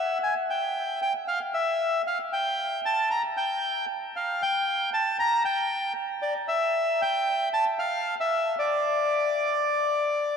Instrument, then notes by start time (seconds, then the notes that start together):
bandoneon
Already playing: E5
0.23 G#5
0.50 G5
1.02 G5
1.28 F5
1.54 E5
2.07 F5
2.33 G5
2.86 A5
3.11 A#5
3.37 G5
4.16 F5
4.42 G5
4.94 A5
5.19 A#5
5.45 G5
6.22 D5
6.48 E5
7.02 G5
7.53 A5
7.79 F5
8.20 E5
8.59 D5